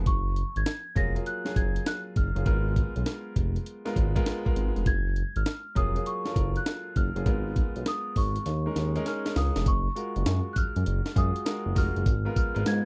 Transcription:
0.06 F#1 C#6, kick, closed hi-hat
0.36 closed hi-hat
0.56 G#1 G#6, closed hi-hat
0.66 snare, closed hi-hat
0.95 F1 F#3 A#3 F4 G#4 A#6, kick, closed hi-hat
1.15 F#3 A#3 F4 G#4, closed hi-hat
1.26 F#6, closed hi-hat
1.45 F#3 A#3 F4 G#4, snare
1.56 F#1 G#6, kick, closed hi-hat
1.76 closed hi-hat
1.86 F#6, snare, closed hi-hat
2.16 F#1 F6, kick, closed hi-hat
2.35 F#1 F#3 A#3 F4 G#4, closed hi-hat
2.45 G#1 G#3 B3 F4 A#4 F6, kick, closed hi-hat
2.76 kick, closed hi-hat
2.96 B1, closed hi-hat
3.06 snare, closed hi-hat
3.36 F1, kick, closed hi-hat
3.56 closed hi-hat
3.66 closed hi-hat
3.85 G#3 B3 F4 A#4, snare
3.96 G#1, kick, closed hi-hat
4.15 G#3 B3 F4 A#4, kick, closed hi-hat
4.26 snare, closed hi-hat
4.45 G#3 B3 F4 A#4, kick
4.56 G#1, closed hi-hat
4.76 F1, closed hi-hat
4.86 F#1 G#6, kick, closed hi-hat
5.16 closed hi-hat
5.36 G#1 F6, closed hi-hat
5.46 snare, closed hi-hat
5.75 F1 F#3 A#3 F4 G#4 D#6, kick, closed hi-hat
5.95 F#3 A#3 F4 G#4, closed hi-hat
6.06 C#6, closed hi-hat
6.25 F#3 A#3 F4 A4, snare
6.33 F#1 A#4, kick, closed hi-hat
6.56 F#6, closed hi-hat
6.66 snare, closed hi-hat
6.96 F#1 F6, kick, closed hi-hat
7.16 F#1 F#3 A#3 F4 G#4, closed hi-hat
7.26 G#1 G#3 B3 F4 A#4, kick, closed hi-hat
7.56 kick, closed hi-hat
7.76 B1, closed hi-hat
7.86 D#6, snare, closed hi-hat
8.16 G#1 C#6, kick, open hi-hat
8.36 closed hi-hat
8.46 D#2, snare, closed hi-hat
8.66 G#3 C#4 D#4 A#4
8.76 D#2, snare, closed hi-hat
8.96 G#3 C#4 D#4 A#4, closed hi-hat
9.06 G#5 F6, snare, closed hi-hat
9.25 G#3 C#4 D#4 A#4, snare
9.36 C#2 F5 D#6, snare, open hi-hat
9.56 F1, snare, closed hi-hat
9.66 F#1 C#6, kick, closed hi-hat, tambourine
9.96 G#3 F4 F#4 A#4, closed hi-hat, tambourine
10.16 F#1, closed hi-hat
10.26 F#2, snare, closed hi-hat, tambourine
10.53 F#2 F#6, kick, closed hi-hat, tambourine
10.58 F6
10.76 F#2, closed hi-hat
10.86 F#1, closed hi-hat
11.06 snare
11.16 F#2 G#3 F4 F#4 G#4 D#6, kick, closed hi-hat, tambourine
11.36 closed hi-hat
11.45 G#3 F4 F#4 A#4, snare, closed hi-hat, tambourine
11.66 F#1
11.75 F1 G#3 F4 F#4 A#4 F6, kick, open hi-hat, tambourine
11.96 F#1, closed hi-hat
12.06 G#1, kick, closed hi-hat, tambourine
12.25 G#3 B3 F4 A#4
12.36 F6, kick, closed hi-hat, tambourine
12.55 G#1 G#3 B3 F4 A#4, closed hi-hat
12.65 G#2 G#3 B3 F4 A#4 G#6, snare, closed hi-hat, tambourine

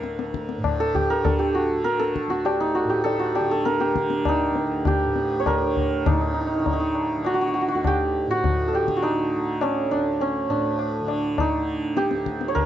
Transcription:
Already playing: A2 D3 A#4 D5
0.01 D2, tabla te
0.19 tabla te
0.34 tabla ke
0.49 tabla te
0.58 A2
0.64 tabla na, tabla ge
0.80 A4
0.95 G4, tabla ge
1.10 A#4
1.15 D3
1.24 A4, tabla tin, tabla ge
1.39 G4
1.55 F#4
1.72 D3
1.84 A#4, tabla te
1.99 A4, tabla te
2.16 tabla ke
2.27 D2 F#4, tabla te
2.45 G4, tabla na
2.60 D#4
2.75 F#4
2.84 A2
2.90 G4
3.04 A4, tabla tin
3.19 F#4
3.35 G4, tabla na
3.40 D3
3.51 A4
3.65 A#4, tabla te
3.80 G4, tabla te
3.95 D3, tabla ke
4.10 tabla te
4.25 D#4, tabla na, tabla ge
4.51 D2
4.55 tabla te
4.85 G4, tabla na, tabla ge
5.05 A2
5.16 tabla te
5.40 C#5
5.46 A#4, tabla na, tabla ge
5.61 D3
5.77 tabla ge
6.06 A2 D#4, tabla na, tabla ge
6.13 D#4
6.21 D#4
6.28 D#4
6.34 D#4
6.41 D#4
6.47 D#4
6.54 D#4
6.59 D3 D#4
6.66 D#4, tabla tin, tabla ge
6.73 D#4
6.80 D#4
6.95 tabla na
7.17 D3
7.25 F#4, tabla na
7.34 F#4
7.41 F#4
7.47 F#4
7.54 F#4
7.61 F#4
7.68 F#4
7.74 D2 F#4
7.84 G4, tabla na, tabla ge
8.27 A2 F#4
8.44 tabla tin, tabla ge
8.68 A4
8.73 G4, tabla na
8.82 D3
8.88 tabla ke
8.97 F#4
9.03 D#4, tabla na
9.37 D3
9.61 C#4, tabla na
9.91 D2 D4, tabla na
10.20 C#4, tabla tin
10.48 A2 D4
10.79 tabla na
11.02 D3
11.08 tabla na
11.38 D#4, tabla na, tabla ge
11.57 D3
11.97 G4, tabla te
12.11 D2, tabla te
12.26 tabla ke
12.41 tabla te
12.48 C#5
12.55 A#4, tabla na, tabla ge

